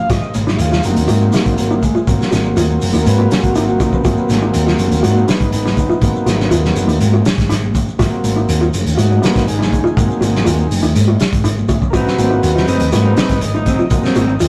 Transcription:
0.10 G#1 F#4 D#5, kick, snare, closed hi-hat, shekere
0.23 shekere
0.34 G#1, closed hi-hat, high conga, shekere
0.47 D#4, snare, high conga, shekere
0.57 D#2 E4, closed hi-hat, shekere
0.61 F4
0.71 F4, snare, shekere
0.83 F#1 F#3 A#3 C4 D#4, closed hi-hat, high conga, low conga, shekere
0.96 D#2, closed hi-hat, shekere
1.07 G#2 F#4, closed hi-hat, shekere
1.21 high conga, shekere
1.32 D#4, snare, closed hi-hat, shekere
1.45 G#1, kick, closed hi-hat, shekere
1.58 F#3 A#3 C4, closed hi-hat, shekere
1.71 D#4, high conga, shekere
1.83 G#3, kick, closed hi-hat, high conga, low conga, shekere
1.95 F4, shekere
2.07 G#1 F#3 A#3 C4, kick, closed hi-hat, shekere
2.20 snare, shekere
2.32 G#1 F#4, snare, closed hi-hat, high conga, shekere
2.45 high conga, shekere
2.57 D#2 F4, closed hi-hat, shekere
2.70 shekere
2.81 F#1, open hi-hat, high conga, low conga, shekere
2.93 D#2 D#4, closed hi-hat, shekere
3.03 G#2 A#4, closed hi-hat, shekere
3.08 B4
3.18 F#4, high conga, shekere
3.31 G#4, snare, closed hi-hat, shekere
3.43 G#1 F#4, kick, closed hi-hat, shekere
3.55 D#4, closed hi-hat, shekere
3.68 F#4, high conga, shekere
3.80 D#4 F#4, kick, closed hi-hat, low conga, shekere
3.93 B3, kick, low conga, shekere
4.04 G#1 F#3 G#3 A#3 C4 F#4, kick, closed hi-hat, shekere
4.17 B3, shekere
4.29 G#1 G#3, snare, closed hi-hat, high conga, shekere
4.42 D#4, shekere
4.54 D#2, closed hi-hat, shekere
4.67 F4, snare, shekere
4.78 F#1, closed hi-hat, high conga, low conga, shekere
4.91 D#2, closed hi-hat, shekere
4.99 G#2 F#3 A#3 C4 D#4 F4 F#4
5.03 F#4, closed hi-hat, high conga, shekere
5.17 high conga, shekere
5.28 B3 D#4, snare, closed hi-hat, shekere
5.40 G#1, kick, closed hi-hat, shekere
5.52 B3 D#4, closed hi-hat, shekere
5.66 D#4, snare, high conga, shekere
5.77 kick, closed hi-hat, high conga, low conga, shekere
5.90 F4, shekere
6.01 G#1 F#3 A#3 C4, kick, closed hi-hat, shekere
6.16 shekere
6.26 G#1 F#4, snare, closed hi-hat, high conga, shekere
6.40 snare, shekere
6.50 D#2 F4, closed hi-hat, shekere
6.65 snare, shekere
6.75 F#1, closed hi-hat, high conga, low conga, shekere
6.88 D#2 D#4, closed hi-hat, shekere
7.00 G#2 F#3 A#3 C4, closed hi-hat, high conga, shekere
7.13 F#4, high conga, shekere
7.25 snare, closed hi-hat, shekere
7.38 G#1, kick, snare, closed hi-hat, shekere
7.50 D#4, snare, closed hi-hat, shekere
7.64 high conga, shekere
7.75 kick, closed hi-hat, low conga, shekere
7.88 shekere
7.98 G#1 F#3 A#3 C4 F#4, kick, snare, closed hi-hat, shekere
8.13 shekere
8.24 G#1, closed hi-hat, high conga, shekere
8.36 D#4, shekere
8.49 D#2, closed hi-hat, shekere
8.61 F4, shekere
8.74 F#1, closed hi-hat, high conga, low conga, shekere
8.86 D#2, closed hi-hat, shekere
8.95 G#2 D#4 F4 F#4, closed hi-hat, high conga, shekere
8.99 F#4
9.11 high conga, shekere
9.22 F#3 A#3 B3 C4 D#4, snare, closed hi-hat, shekere
9.36 G#1, kick, snare, closed hi-hat, shekere
9.47 D#4 G#4, closed hi-hat, shekere
9.59 D#4, snare, high conga, shekere
9.72 kick, closed hi-hat, high conga, low conga, shekere
9.84 F4, low conga, shekere
9.96 G#1 F#3 A#3 C4, kick, closed hi-hat, shekere
10.11 shekere
10.21 G#1 F#4, closed hi-hat, high conga, shekere
10.35 snare, high conga, shekere
10.45 D#2 F4, closed hi-hat, shekere
10.60 shekere
10.71 F#1, open hi-hat, high conga, low conga, shekere
10.83 D#2 D#4, closed hi-hat, shekere
10.95 G#2, closed hi-hat, high conga, shekere
11.08 F#4, high conga, shekere
11.20 snare, closed hi-hat, shekere
11.33 G#1, kick, closed hi-hat, shekere
11.44 D#4, closed hi-hat, shekere
11.57 high conga, shekere
11.69 F#4, kick, closed hi-hat, low conga, shekere
11.82 kick, shekere
11.90 F#3 C4 F#4 A#4, kick, closed hi-hat, shekere
11.94 G#1 D#4 B4
12.06 C4 D#4, snare, shekere
12.17 G#1 F#3 A#3 C4 D#4 F#4 B4, closed hi-hat, high conga, shekere
12.30 D#4, shekere
12.43 D#2 F#4 B4, closed hi-hat, shekere
12.55 C4 D#4 F4, snare, shekere
12.67 F#1 F#3 C4 D#4 B4 D#5, closed hi-hat, high conga, low conga, shekere
12.80 D#2, closed hi-hat, shekere
12.92 G#2 F#3 A#3 C4 F#4 B4 D#5, snare, closed hi-hat, shekere
13.04 C4 D#4, high conga, shekere
13.17 C4 D#4 B4 D#5, muted clean electric guitar stroke, snare, closed hi-hat, shekere
13.29 G#1, kick, snare, closed hi-hat, shekere
13.41 D#5, closed hi-hat, shekere
13.54 D#4, muted clean electric guitar stroke, high conga, shekere
13.66 F#3 C4 D#4, kick, closed hi-hat, high conga, low conga, shekere
13.79 F4, low conga, shekere
13.90 G#1 F#3 A#3 C4, kick, closed hi-hat, shekere
14.03 C4 D#4, snare, shekere
14.15 G#1 F#3 C4 D#4 F#4, closed hi-hat, high conga, shekere
14.29 shekere
14.40 D#2 F4, closed hi-hat, shekere

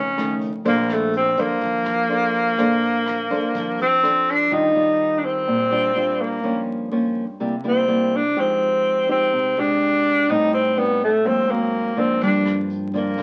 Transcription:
Already playing: C#2 F2 C#4
0.17 D#3 A3 C#4, cross-stick, closed hi-hat
0.41 closed hi-hat
0.65 A#1 A#3 D4 A4 C5, kick, closed hi-hat
0.89 cross-stick, closed hi-hat
0.93 A3
1.13 C4, closed hi-hat
1.37 F2 A#3 D4 A4 C5, kick, closed hi-hat
1.61 F2 F3, kick, closed hi-hat
1.85 F2, cross-stick, closed hi-hat
2.09 D4 A4 C5, closed hi-hat
2.34 closed hi-hat
2.58 A#1 A#3 D4 A4 C5, kick, cross-stick, closed hi-hat
2.82 closed hi-hat
3.06 cross-stick, closed hi-hat
3.30 F2 D4 A4 C5, closed hi-hat
3.54 F2 F3, kick, closed hi-hat
3.79 F2 C4, closed hi-hat
4.03 D4 A4 C5, cross-stick, closed hi-hat
4.27 D4, closed hi-hat
4.51 D#3 G3 D4 D#4 F4
4.75 G3 F4
5.19 D4
5.25 C4
5.47 A#2
5.71 G3 D4 F4
5.95 G3 D4 F4
6.21 A#3
6.43 G2 F3 A#3 C#4
6.91 F3 A#3 C#4
7.40 C3 G3 A#3 E4
7.64 G3 A#3 C4 E4
7.88 G3 A#3 E4
8.16 D4
8.36 F3 G#3 C4 D#4 G4
9.08 G#3 C4 D#4 G4
9.33 C3
9.58 G#3 D4 G4
10.29 A2 G3 C4 D#4
10.54 C4
10.77 G3 B3 C4 D#4
11.04 A3
11.25 G#2 F#3 A#3 C4
11.49 F#3 A#3 C4
11.96 F3 A#3 C4 D4
12.21 G2 D4, kick, closed hi-hat
12.46 cross-stick, closed hi-hat
12.70 closed hi-hat
12.94 F3 A#3 D4, kick, closed hi-hat
13.17 D2 D3, kick, closed hi-hat

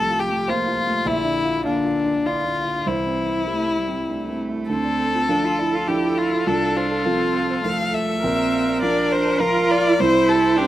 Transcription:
Already playing: C2 C3 F3 A3 F4 A4 A5
0.09 F4
0.19 G4
0.29 A3
0.48 A#3 F4 C5
0.67 F4
0.87 A3
1.05 A#1 D3 E4 E5
1.25 D4
1.44 F4
1.64 D3 A#3 D4 F5
1.85 F4
2.05 D4
2.25 D3 E4 F4 D5
2.46 D4
2.66 F4
2.86 C2 E3 E4 C5
3.06 C4
3.27 E4
3.47 G3 A3
3.67 E4
3.78 G3
3.88 C4
4.08 A3 D4
4.28 C4
4.49 E4
4.69 D2 C4 D4 A4
4.85 D5
5.00 A4
5.15 F4
5.29 F3 D4 F4 A4
5.44 F4
5.59 E4 D5
5.75 F4
5.87 F3 D4 E4 G4 A4
6.03 F4
6.18 F4
6.33 F4
6.47 C2 D4 F4 A4
6.62 F5
6.77 F4 C5
6.92 A4
7.05 F3 C4 F4 A4
7.21 A4
7.35 F5
7.50 C5
7.64 F3 A3 F4 A4 F5
7.80 A4
7.93 A4 E5
8.10 A4
8.23 A#1 C4 A#4
8.39 A#5
8.54 F5
8.69 D5
8.82 F3 D4 F4 A#4 D5
9.12 C5 A#5
9.27 F5
9.40 F3 F4 A#4
9.71 D5
9.86 D5
9.98 C2 C4 E4 C5
10.15 C5
10.29 G4 A4
10.44 E4
10.56 C4 D4 E4 G4

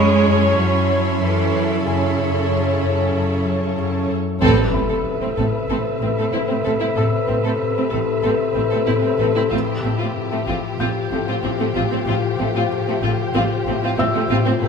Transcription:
Already playing: F#2 F#3 G#3 C#4 E4 C#5 E5 A5 B5 C6
0.26 F#2
0.58 F#2 F#3
0.90 F#3
1.21 F#2 E3 C#4 A4 C#5
1.54 F#2
1.85 F#2 C#3 C#4 A4 C#5 G#5
2.18 F#2
2.50 F#3
2.82 F#2
3.15 F#2
3.45 F#3
3.78 F#2
4.09 F#2
4.40 A1 A2 C3 C4 A4 B4 E5, impact
4.73 A1 A2 C4 B5
4.88 A2 C4 A4
5.06 A2
5.21 A2 C4
5.37 A1 A2 C4 A4
5.68 A1 A2 C4 A4
6.00 A1 A2 C4
6.17 A2 C4 A4
6.32 A1 A2 C4 E4
6.47 A2 C4
6.64 A1 A2 C4 A4
6.80 A2 C4 E4
6.96 A1 A2 C4 A4 E6
7.27 A1 A2 C4
7.43 A2 C4 A4
7.62 A2
7.77 A2 C4
7.90 A1 A2 C4 A4
7.94 A2
8.22 A1 A2 C4 A4
8.55 A1 A2 C4
8.70 A2 C4 A4
8.86 A1 A2 C4 E4
9.01 A2 C4
9.05 C4
9.18 A1 A2 C4 A4
9.35 A2 C4 E4
9.50 A1 A2 F3 C4 F4 G4 C5
9.54 G4
9.82 A1 A2 A3 C4
9.98 A2 C4 F4
10.16 A2
10.31 A2 A3 C4
10.47 A1 A2 C4 F4
10.80 A1 A2 C4 F4 G6
11.12 A1 A2 A3 C4
11.28 A2 C4 F4
11.43 A1 A2 C4
11.59 A2 A3 C4
11.75 A1 A2 C4 F4
11.91 A2 C4
12.06 A1 A2 C4 F4
12.39 A1 A2 A3 C4
12.55 A2 C4 F4
12.71 A2
12.88 A2 A3 C4
13.02 A1 A2 C4 F4
13.34 A1 A2 C4 F4
13.66 A1 A2 A3 C4
13.83 A2 C4 F4
13.98 A1 A2 C4 E5 E6
14.14 A2 A3 C4
14.29 A1 A2 C4 F4
14.45 A2 C4
14.61 A1 A2 C3 C4 E4 A4 B4 G6 C7

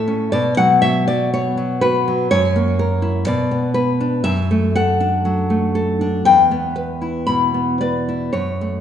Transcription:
Already playing: A2 A3 A4 E5
0.08 C#4
0.32 B2 D5
0.57 F#3 F#5
0.82 F#4 E5
1.08 F#3 D5
1.34 B3 C#5
1.57 F#3
1.81 F#4 B4
2.08 F#3
2.31 F#2 C#5
2.56 A#3
2.79 A#4
3.02 E4
3.27 B2 D5
3.51 B3
3.74 B4
4.01 D4
4.24 F#2 E5
4.51 A3
4.76 A4 F#5
5.00 D4
5.25 F#3
5.50 A3
5.75 A4
6.01 D4
6.25 E2 G5
6.51 B3
6.76 B4
7.02 E4
7.27 B2 B5
7.54 B3
7.81 B4 D5
8.09 E4
8.33 F#2 C#5
8.61 A3

